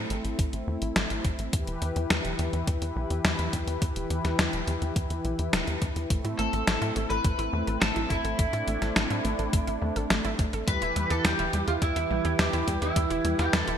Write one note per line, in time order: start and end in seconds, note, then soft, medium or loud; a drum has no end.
0.00 1.49 A3 medium
0.00 1.49 C4 medium
0.00 8.35 E4 medium
0.10 0.21 A1 medium
0.10 closed hi-hat medium
0.25 0.35 A1 medium
0.25 closed hi-hat soft
0.39 0.49 A1 medium
0.39 kick loud
0.39 closed hi-hat medium
0.53 0.64 A1 medium
0.53 closed hi-hat soft
0.67 0.78 E2 medium
0.82 0.92 A1 medium
0.82 closed hi-hat soft
0.96 1.06 A1 loud
0.96 snare loud
0.96 closed hi-hat medium
1.10 1.21 A1 medium
1.10 closed hi-hat soft
1.25 1.35 A1 medium
1.25 kick loud
1.25 closed hi-hat medium
1.39 1.49 A1 medium
1.39 closed hi-hat soft
1.53 1.64 E2 loud
1.53 6.06 E3 medium
1.53 6.06 G4 medium
1.53 6.06 B4 medium
1.53 kick loud
1.53 closed hi-hat medium
1.67 1.78 E1 medium
1.67 closed hi-hat soft
1.82 1.92 E2 medium
1.82 closed hi-hat medium
1.96 2.06 E2 medium
1.96 closed hi-hat soft
2.10 2.21 E2 loud
2.10 snare loud
2.10 closed hi-hat medium
2.25 2.35 E1 medium
2.25 closed hi-hat soft
2.39 2.49 E2 medium
2.39 closed hi-hat medium
2.53 2.64 E2 medium
2.53 closed hi-hat soft
2.67 2.78 E2 loud
2.67 kick loud
2.67 closed hi-hat medium
2.82 2.92 E2 medium
2.82 closed hi-hat soft
2.96 3.06 B1 medium
3.10 3.21 E2 medium
3.10 closed hi-hat soft
3.25 3.35 E2 loud
3.25 snare loud
3.25 closed hi-hat medium
3.39 3.49 E2 medium
3.39 closed hi-hat soft
3.53 3.64 E2 medium
3.53 kick medium
3.53 closed hi-hat medium
3.67 3.78 E2 medium
3.67 closed hi-hat soft
3.82 3.92 E2 loud
3.82 kick loud
3.82 closed hi-hat medium
3.96 4.06 E1 medium
3.96 closed hi-hat soft
4.10 4.21 E2 medium
4.10 closed hi-hat medium
4.25 4.35 E2 medium
4.25 snare soft
4.25 closed hi-hat soft
4.39 4.49 E2 loud
4.39 snare loud
4.39 closed hi-hat medium
4.53 4.64 E1 medium
4.53 closed hi-hat soft
4.67 4.78 E2 medium
4.67 closed hi-hat medium
4.82 4.92 E2 medium
4.82 closed hi-hat soft
4.96 5.06 E2 loud
4.96 kick loud
4.96 closed hi-hat medium
5.10 5.21 E2 medium
5.10 closed hi-hat soft
5.25 5.35 B1 medium
5.25 closed hi-hat soft
5.39 5.49 E2 medium
5.39 closed hi-hat soft
5.53 5.64 E1 loud
5.53 snare loud
5.53 closed hi-hat medium
5.67 5.78 E2 medium
5.67 closed hi-hat soft
5.82 5.92 E2 medium
5.82 kick loud
5.82 closed hi-hat medium
5.96 6.06 E2 medium
5.96 closed hi-hat soft
6.10 6.21 A1 loud
6.10 10.63 A3 medium
6.10 6.23 A3 medium
6.10 10.63 C4 medium
6.10 kick loud
6.10 closed hi-hat medium
6.25 6.35 A2 medium
6.25 6.38 E4 loud
6.25 closed hi-hat soft
6.39 6.49 A1 medium
6.39 6.51 A3 medium
6.39 7.09 A4 loud
6.39 closed hi-hat medium
6.53 6.63 A1 medium
6.53 6.65 A4 medium
6.53 closed hi-hat soft
6.67 6.78 A1 loud
6.67 6.80 A3 medium
6.67 snare loud
6.67 closed hi-hat medium
6.82 6.92 A2 medium
6.82 6.95 E4 loud
6.82 closed hi-hat soft
6.96 7.06 A1 medium
6.96 7.08 A3 medium
6.96 closed hi-hat medium
7.10 7.21 A1 medium
7.10 7.23 A4 medium
7.10 7.81 B4 loud
7.10 closed hi-hat soft
7.25 7.35 A1 loud
7.25 7.37 A3 medium
7.25 kick loud
7.25 closed hi-hat medium
7.39 7.49 A1 medium
7.39 7.52 E4 loud
7.39 closed hi-hat soft
7.53 7.63 E2 medium
7.53 7.65 A3 medium
7.67 7.78 A1 medium
7.67 7.80 A4 medium
7.67 closed hi-hat soft
7.81 7.92 A1 loud
7.81 7.94 A3 medium
7.81 8.11 A4 loud
7.81 snare loud
7.81 closed hi-hat medium
7.96 8.06 A1 medium
7.96 8.10 E4 loud
7.96 closed hi-hat soft
8.10 8.21 A1 medium
8.10 8.22 A3 medium
8.10 10.35 E4 medium
8.10 kick medium
8.10 closed hi-hat medium
8.24 8.35 A1 medium
8.24 8.37 A4 medium
8.24 closed hi-hat soft
8.39 8.49 A1 loud
8.39 8.51 A3 medium
8.39 10.65 D4 medium
8.39 kick loud
8.39 closed hi-hat medium
8.53 8.63 A2 medium
8.53 8.67 E4 loud
8.53 closed hi-hat soft
8.67 8.78 A1 loud
8.67 8.80 A3 medium
8.67 closed hi-hat medium
8.82 8.92 A1 medium
8.82 8.94 A4 medium
8.82 snare soft
8.82 closed hi-hat soft
8.96 9.06 A1 loud
8.96 9.08 A3 medium
8.96 snare loud
8.96 closed hi-hat medium
9.10 9.21 A2 medium
9.10 9.24 E4 loud
9.10 closed hi-hat soft
9.25 9.35 A1 medium
9.25 9.37 A3 medium
9.25 closed hi-hat medium
9.39 9.49 A1 medium
9.39 9.51 A4 medium
9.39 closed hi-hat soft
9.53 9.64 A1 loud
9.53 9.65 A3 medium
9.53 kick loud
9.53 closed hi-hat medium
9.67 9.78 A1 medium
9.67 9.81 E4 loud
9.67 closed hi-hat soft
9.82 9.92 E2 loud
9.82 9.94 A3 medium
9.96 10.06 A1 medium
9.96 10.08 A4 medium
9.96 closed hi-hat soft
10.10 10.21 A1 loud
10.10 10.23 A3 medium
10.10 snare loud
10.10 closed hi-hat medium
10.25 10.35 A1 medium
10.25 10.38 E4 loud
10.25 closed hi-hat soft
10.39 10.49 A1 medium
10.39 10.51 A3 medium
10.39 kick loud
10.39 closed hi-hat medium
10.53 10.64 A1 medium
10.53 10.66 A4 medium
10.53 closed hi-hat soft
10.68 10.78 E2 loud
10.68 13.78 E3 medium
10.68 10.80 G3 medium
10.68 13.78 E4 medium
10.68 13.78 G4 medium
10.68 13.78 B4 medium
10.68 11.10 B4 loud
10.68 kick loud
10.68 closed hi-hat medium
10.82 10.92 E1 medium
10.82 10.95 E4 loud
10.82 closed hi-hat soft
10.96 11.06 E2 medium
10.96 11.08 G3 medium
10.96 closed hi-hat medium
11.10 11.21 E2 medium
11.10 11.23 G4 medium
11.10 11.25 A4 loud
11.10 closed hi-hat soft
11.25 11.35 E2 loud
11.25 11.37 G3 medium
11.25 11.67 G4 loud
11.25 snare loud
11.25 closed hi-hat medium
11.39 11.49 E1 medium
11.39 11.53 E4 loud
11.39 closed hi-hat soft
11.53 11.64 E2 medium
11.53 11.65 G3 medium
11.53 closed hi-hat medium
11.68 11.78 E2 medium
11.68 11.73 F4 medium
11.68 11.80 G4 medium
11.68 closed hi-hat soft
11.82 11.92 E2 loud
11.82 11.94 G3 medium
11.82 12.39 E4 medium
11.82 kick loud
11.82 closed hi-hat medium
11.96 12.06 E2 medium
11.96 12.10 E4 loud
11.96 closed hi-hat soft
12.10 12.21 B1 medium
12.10 12.23 G3 medium
12.25 12.35 E2 medium
12.25 12.37 G4 medium
12.25 closed hi-hat soft
12.39 12.49 E2 loud
12.39 12.51 G3 medium
12.39 12.79 G4 medium
12.39 snare loud
12.39 closed hi-hat medium
12.53 12.64 E2 medium
12.53 12.67 E4 loud
12.53 closed hi-hat soft
12.68 12.78 E2 loud
12.68 12.80 G3 medium
12.68 kick medium
12.68 closed hi-hat medium
12.82 12.92 E2 medium
12.82 13.35 E4 medium
12.82 12.94 G4 medium
12.82 closed hi-hat soft
12.96 13.06 E2 loud
12.96 13.08 G3 medium
12.96 kick loud
12.96 closed hi-hat medium
13.10 13.21 E1 medium
13.10 13.24 E4 loud
13.10 closed hi-hat soft
13.25 13.35 E2 loud
13.25 13.37 G3 medium
13.25 closed hi-hat medium
13.39 13.49 E2 medium
13.39 13.51 G4 medium
13.39 13.54 G4 medium
13.39 snare soft
13.39 closed hi-hat soft
13.53 13.64 E2 loud
13.53 13.65 G3 medium
13.53 13.78 A4 medium
13.53 snare loud
13.53 closed hi-hat medium
13.68 13.78 E1 medium
13.68 13.78 E4 loud
13.68 closed hi-hat soft